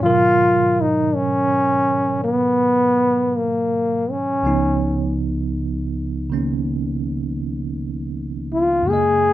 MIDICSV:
0, 0, Header, 1, 3, 480
1, 0, Start_track
1, 0, Tempo, 1107011
1, 6, Time_signature, 4, 2, 24, 8
1, 4046, End_track
2, 0, Start_track
2, 0, Title_t, "Trombone"
2, 0, Program_c, 0, 57
2, 14, Note_on_c, 0, 65, 102
2, 352, Note_on_c, 0, 63, 86
2, 358, Note_off_c, 0, 65, 0
2, 501, Note_on_c, 0, 61, 96
2, 507, Note_off_c, 0, 63, 0
2, 970, Note_off_c, 0, 61, 0
2, 972, Note_on_c, 0, 59, 93
2, 1459, Note_on_c, 0, 58, 71
2, 1466, Note_off_c, 0, 59, 0
2, 1781, Note_on_c, 0, 61, 85
2, 1787, Note_off_c, 0, 58, 0
2, 2254, Note_off_c, 0, 61, 0
2, 3699, Note_on_c, 0, 65, 88
2, 3858, Note_on_c, 0, 68, 95
2, 3864, Note_off_c, 0, 65, 0
2, 4046, Note_off_c, 0, 68, 0
2, 4046, End_track
3, 0, Start_track
3, 0, Title_t, "Tine electric piano"
3, 0, Program_c, 1, 4
3, 0, Control_c, 1, 64, 127
3, 6, Note_on_c, 1, 44, 47
3, 11, Control_c, 1, 64, 0
3, 14, Note_on_c, 1, 51, 41
3, 16, Note_on_c, 1, 54, 41
3, 24, Note_on_c, 1, 47, 44
3, 26, Note_on_c, 1, 70, 53
3, 94, Control_c, 1, 64, 127
3, 1920, Note_off_c, 1, 44, 0
3, 1920, Note_on_c, 1, 37, 42
3, 1924, Note_off_c, 1, 51, 0
3, 1924, Note_on_c, 1, 49, 42
3, 1925, Note_off_c, 1, 54, 0
3, 1926, Control_c, 1, 64, 0
3, 1929, Note_off_c, 1, 47, 0
3, 1929, Note_on_c, 1, 53, 37
3, 1930, Note_off_c, 1, 70, 0
3, 1931, Note_on_c, 1, 59, 38
3, 1937, Note_on_c, 1, 63, 55
3, 1995, Control_c, 1, 64, 127
3, 2725, Note_off_c, 1, 49, 0
3, 2731, Note_on_c, 1, 49, 36
3, 2739, Note_on_c, 1, 51, 36
3, 2741, Note_on_c, 1, 58, 31
3, 2747, Note_on_c, 1, 61, 43
3, 3824, Note_on_c, 1, 42, 37
3, 3832, Note_off_c, 1, 49, 0
3, 3837, Note_on_c, 1, 49, 37
3, 3845, Note_off_c, 1, 37, 0
3, 3848, Note_on_c, 1, 56, 38
3, 3849, Note_off_c, 1, 53, 0
3, 3850, Note_off_c, 1, 51, 0
3, 3850, Note_off_c, 1, 59, 0
3, 3850, Control_c, 1, 64, 0
3, 3851, Note_off_c, 1, 58, 0
3, 3853, Note_off_c, 1, 63, 0
3, 3854, Note_off_c, 1, 61, 0
3, 3859, Note_on_c, 1, 58, 35
3, 3873, Note_on_c, 1, 75, 46
3, 3927, Control_c, 1, 64, 127
3, 4046, Note_off_c, 1, 42, 0
3, 4046, Note_off_c, 1, 49, 0
3, 4046, Note_off_c, 1, 56, 0
3, 4046, Note_off_c, 1, 58, 0
3, 4046, Note_off_c, 1, 75, 0
3, 4046, End_track
0, 0, End_of_file